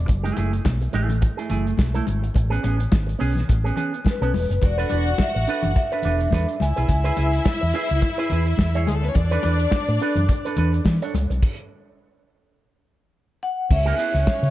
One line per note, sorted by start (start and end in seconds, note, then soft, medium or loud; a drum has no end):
0.08 0.30 F#1 loud
0.08 muted clean electric guitar stroke soft
0.08 kick loud
0.08 closed hi-hat medium
0.08 muted conga medium
0.08 shaker medium
0.23 0.36 A3 medium
0.23 0.37 E4 medium
0.23 0.37 G#4 medium
0.23 closed hi-hat medium
0.23 shaker medium
0.37 0.58 F#1 medium
0.37 0.55 A3 medium
0.37 0.53 E4 medium
0.37 0.52 G#4 medium
0.37 closed hi-hat medium
0.37 muted conga medium
0.37 shaker medium
0.53 muted clean electric guitar stroke medium
0.53 closed hi-hat soft
0.53 shaker medium
0.65 0.86 B1 medium
0.65 kick loud
0.65 snare loud
0.65 high conga medium
0.65 shaker medium
0.81 muted clean electric guitar stroke soft
0.81 closed hi-hat soft
0.81 shaker soft
0.93 1.26 A1 loud
0.93 1.16 A3 medium
0.93 1.09 E4 loud
0.93 1.08 G#4 loud
0.93 closed hi-hat medium
1.09 muted clean electric guitar stroke soft
1.09 closed hi-hat soft
1.09 low conga medium
1.09 shaker soft
1.21 muted clean electric guitar stroke soft
1.21 kick loud
1.21 closed hi-hat medium
1.21 muted conga medium
1.21 shaker medium
1.37 1.48 A3 medium
1.37 1.49 E4 medium
1.37 1.50 G#4 medium
1.37 closed hi-hat soft
1.37 shaker medium
1.50 1.71 F#1 medium
1.50 1.73 A3 medium
1.50 1.66 E4 medium
1.50 1.65 G#4 medium
1.50 closed hi-hat medium
1.50 muted conga soft
1.50 low conga medium
1.50 shaker soft
1.66 muted clean electric guitar stroke soft
1.66 closed hi-hat soft
1.66 shaker medium
1.77 2.00 B1 medium
1.77 muted clean electric guitar stroke soft
1.77 kick medium
1.77 snare loud
1.77 high conga medium
1.77 shaker medium
1.94 2.05 A3 medium
1.94 2.06 E4 medium
1.94 2.07 A4 medium
1.94 closed hi-hat medium
1.94 high conga medium
1.94 shaker soft
2.07 2.28 G#1 medium
2.07 muted clean electric guitar stroke soft
2.07 closed hi-hat medium
2.07 high conga medium
2.22 muted clean electric guitar stroke soft
2.22 closed hi-hat soft
2.22 shaker medium
2.34 2.56 A1 loud
2.34 muted clean electric guitar stroke soft
2.34 kick medium
2.34 closed hi-hat medium
2.34 muted conga soft
2.34 shaker medium
2.50 2.62 B3 medium
2.50 2.63 C#4 medium
2.50 2.64 G#4 medium
2.50 closed hi-hat soft
2.50 shaker soft
2.63 2.85 A1 medium
2.63 2.82 B3 medium
2.63 2.79 C#4 medium
2.63 2.77 G#4 medium
2.63 closed hi-hat medium
2.63 muted conga medium
2.63 shaker medium
2.78 muted clean electric guitar stroke soft
2.78 closed hi-hat soft
2.78 shaker soft
2.92 3.13 G#1 loud
2.92 kick loud
2.92 snare loud
2.92 high conga medium
2.92 shaker medium
3.07 muted clean electric guitar stroke soft
3.07 closed hi-hat soft
3.07 shaker medium
3.19 3.42 B1 medium
3.19 3.42 B3 medium
3.19 3.35 C#4 medium
3.19 3.33 G#4 medium
3.19 open hi-hat medium
3.35 muted clean electric guitar stroke soft
3.35 snare soft
3.35 closed hi-hat soft
3.35 low conga medium
3.35 shaker soft
3.48 3.70 A1 medium
3.48 muted clean electric guitar stroke soft
3.48 kick loud
3.48 closed hi-hat medium
3.48 muted conga medium
3.48 shaker medium
3.64 3.75 B3 medium
3.64 3.76 C#4 medium
3.64 3.76 G#4 medium
3.64 closed hi-hat soft
3.64 shaker soft
3.76 3.99 B3 medium
3.76 3.93 C#4 medium
3.76 3.92 G#4 medium
3.76 closed hi-hat medium
3.76 low conga medium
3.76 shaker soft
3.93 muted clean electric guitar stroke soft
3.93 closed hi-hat soft
3.93 shaker soft
4.05 muted clean electric guitar stroke soft
4.05 kick medium
4.05 snare loud
4.05 high conga medium
4.05 shaker medium
4.10 4.66 B4 medium
4.21 4.31 B1 medium
4.21 4.32 B3 medium
4.21 4.33 C#4 medium
4.21 4.34 A4 medium
4.21 closed hi-hat soft
4.21 shaker soft
4.33 4.45 E1 medium
4.33 muted clean electric guitar stroke soft
4.33 open hi-hat medium
4.33 high conga medium
4.49 4.59 F#1 medium
4.49 muted clean electric guitar stroke soft
4.49 closed hi-hat soft
4.49 shaker medium
4.62 4.83 E1 loud
4.62 6.29 F#4 medium
4.62 5.22 D5 medium
4.62 6.29 F#5 loud
4.62 muted clean electric guitar stroke soft
4.62 kick loud
4.62 closed hi-hat medium
4.62 muted conga medium
4.62 shaker medium
4.78 4.89 D4 medium
4.78 4.90 A4 medium
4.78 4.91 B4 medium
4.78 closed hi-hat medium
4.78 shaker medium
4.90 5.12 E1 medium
4.90 5.09 D4 medium
4.90 5.06 A4 medium
4.90 5.05 B4 medium
4.90 closed hi-hat medium
4.90 muted conga medium
4.90 shaker medium
5.06 muted clean electric guitar stroke soft
5.06 closed hi-hat soft
5.06 shaker medium
5.18 5.66 E5 loud
5.18 kick loud
5.18 snare loud
5.18 high conga medium
5.18 shaker medium
5.35 5.45 A1 medium
5.35 muted clean electric guitar stroke soft
5.35 closed hi-hat soft
5.35 shaker medium
5.47 5.70 D4 medium
5.47 5.64 A4 medium
5.47 5.62 B4 loud
5.47 closed hi-hat medium
5.63 5.73 F#1 medium
5.63 5.77 F#5 medium
5.63 muted clean electric guitar stroke soft
5.63 closed hi-hat soft
5.63 low conga medium
5.63 shaker soft
5.75 6.64 E5 loud
5.75 muted clean electric guitar stroke soft
5.75 kick loud
5.75 closed hi-hat medium
5.75 muted conga medium
5.75 shaker medium
5.92 6.04 D4 medium
5.92 6.04 A4 medium
5.92 6.05 B4 medium
5.92 closed hi-hat soft
5.92 shaker soft
6.03 6.25 E1 medium
6.03 6.27 D4 medium
6.03 6.21 A4 medium
6.03 6.20 B4 medium
6.03 closed hi-hat medium
6.03 low conga medium
6.20 muted clean electric guitar stroke soft
6.20 closed hi-hat soft
6.20 shaker medium
6.31 6.44 E2 loud
6.31 6.55 D4 medium
6.31 6.48 A4 medium
6.31 6.47 B4 loud
6.31 kick medium
6.31 snare loud
6.31 high conga medium
6.31 shaker medium
6.48 muted clean electric guitar stroke soft
6.48 closed hi-hat medium
6.48 shaker medium
6.60 6.72 C#2 medium
6.60 8.79 E4 loud
6.60 8.79 E5 loud
6.60 7.42 G#5 medium
6.60 muted clean electric guitar stroke soft
6.60 closed hi-hat medium
6.60 high conga medium
6.60 shaker soft
6.76 6.87 B1 medium
6.76 6.87 E4 soft
6.76 6.88 G#4 medium
6.76 6.88 B4 medium
6.76 closed hi-hat soft
6.76 shaker medium
6.88 7.10 C#2 loud
6.88 muted clean electric guitar stroke soft
6.88 kick loud
6.88 closed hi-hat medium
6.88 muted conga medium
6.88 shaker medium
7.04 7.15 E4 medium
7.04 7.17 G#4 medium
7.04 7.17 B4 medium
7.04 closed hi-hat medium
7.04 shaker medium
7.16 7.38 C#2 medium
7.16 7.35 E4 medium
7.16 7.33 G#4 medium
7.16 7.31 B4 medium
7.16 closed hi-hat medium
7.16 muted conga medium
7.16 shaker medium
7.32 muted clean electric guitar stroke soft
7.32 closed hi-hat soft
7.32 shaker medium
7.45 kick loud
7.45 snare loud
7.45 high conga medium
7.45 shaker medium
7.61 7.71 E2 medium
7.61 muted clean electric guitar stroke medium
7.61 closed hi-hat soft
7.61 shaker soft
7.73 7.97 E4 loud
7.73 7.90 G#4 loud
7.73 7.88 B4 loud
7.73 closed hi-hat medium
7.89 8.00 C#2 medium
7.89 muted clean electric guitar stroke soft
7.89 closed hi-hat soft
7.89 shaker medium
8.01 muted clean electric guitar stroke soft
8.01 kick loud
8.01 closed hi-hat medium
8.01 muted conga medium
8.01 shaker medium
8.18 8.30 E4 medium
8.18 8.31 G#4 medium
8.18 8.32 B4 medium
8.18 closed hi-hat soft
8.18 shaker medium
8.30 8.52 E2 medium
8.30 8.53 E4 medium
8.30 8.47 G#4 medium
8.30 8.46 B4 medium
8.30 closed hi-hat medium
8.30 muted conga soft
8.30 low conga medium
8.46 muted clean electric guitar stroke soft
8.46 closed hi-hat soft
8.46 shaker medium
8.57 8.87 E2 medium
8.57 muted clean electric guitar stroke soft
8.57 kick medium
8.57 snare loud
8.57 high conga medium
8.57 shaker medium
8.74 8.87 E4 medium
8.74 8.87 G#4 medium
8.74 8.89 C#5 medium
8.74 closed hi-hat medium
8.74 shaker medium
8.87 9.08 D2 medium
8.87 8.95 G#3 medium
8.87 8.95 G#4 medium
8.87 muted clean electric guitar stroke soft
8.87 closed hi-hat medium
8.87 high conga medium
8.87 shaker medium
8.94 9.03 A3 medium
8.94 9.03 A4 medium
9.02 9.10 B3 medium
9.02 9.09 B4 medium
9.02 muted clean electric guitar stroke medium
9.02 closed hi-hat soft
9.02 shaker medium
9.08 9.15 C#4 medium
9.08 9.15 C#5 medium
9.15 9.36 E2 loud
9.15 10.83 D4 medium
9.15 10.82 D5 loud
9.15 muted clean electric guitar stroke soft
9.15 kick loud
9.15 closed hi-hat medium
9.15 muted conga medium
9.15 shaker medium
9.30 9.42 D4 medium
9.30 9.44 A4 medium
9.30 9.45 B4 medium
9.30 closed hi-hat medium
9.30 shaker medium
9.43 9.65 E2 medium
9.43 9.62 D4 medium
9.43 9.60 A4 medium
9.43 9.59 B4 medium
9.43 closed hi-hat medium
9.43 muted conga medium
9.43 shaker medium
9.59 muted clean electric guitar stroke soft
9.59 closed hi-hat medium
9.59 shaker medium
9.71 kick loud
9.71 snare loud
9.71 high conga medium
9.71 shaker medium
9.87 9.98 A2 medium
9.87 muted clean electric guitar stroke medium
9.87 closed hi-hat medium
9.87 shaker soft
9.99 10.24 D4 medium
9.99 10.17 A4 medium
9.99 10.16 B4 medium
9.99 closed hi-hat medium
10.15 10.26 F#2 medium
10.15 muted clean electric guitar stroke soft
10.15 closed hi-hat soft
10.15 low conga medium
10.15 shaker medium
10.28 muted clean electric guitar stroke soft
10.28 kick loud
10.28 closed hi-hat medium
10.28 muted conga medium
10.28 shaker medium
10.45 10.56 D4 medium
10.45 10.57 A4 medium
10.45 10.57 B4 medium
10.45 closed hi-hat soft
10.45 shaker medium
10.56 10.79 E2 medium
10.56 10.80 D4 medium
10.56 10.74 A4 medium
10.56 10.72 B4 loud
10.56 closed hi-hat medium
10.56 muted conga soft
10.56 low conga medium
10.73 muted clean electric guitar stroke soft
10.73 closed hi-hat soft
10.73 shaker medium
10.85 10.97 E3 loud
10.85 muted clean electric guitar stroke soft
10.85 kick medium
10.85 snare loud
10.85 high conga medium
10.85 shaker medium
11.02 11.14 D4 medium
11.02 11.15 A4 medium
11.02 11.15 C#5 medium
11.02 closed hi-hat medium
11.02 shaker soft
11.14 11.26 C#2 medium
11.14 muted clean electric guitar stroke medium
11.14 closed hi-hat medium
11.14 high conga medium
11.14 shaker medium
11.30 11.39 B1 medium
11.30 muted clean electric guitar stroke soft
11.30 closed hi-hat soft
11.30 shaker soft
11.43 kick loud
11.43 crash medium
13.43 13.72 F#5 loud
13.71 13.91 C#2 loud
13.71 14.50 C#4 medium
13.71 14.50 C#5 loud
13.71 14.50 E5 loud
13.71 muted clean electric guitar stroke soft
13.71 kick loud
13.71 crash medium
13.71 shaker medium
13.86 13.97 B3 medium
13.86 13.98 E4 medium
13.86 13.99 G#4 medium
13.86 closed hi-hat medium
13.86 shaker medium
13.98 14.17 B3 medium
13.98 14.14 E4 medium
13.98 14.13 G#4 medium
13.98 closed hi-hat medium
13.98 shaker medium
14.14 14.24 C#2 medium
14.14 muted clean electric guitar stroke soft
14.14 closed hi-hat soft
14.14 shaker medium
14.27 kick loud
14.27 snare loud
14.27 shaker medium
14.42 14.50 C#3 medium
14.42 muted clean electric guitar stroke soft
14.42 closed hi-hat soft
14.42 shaker medium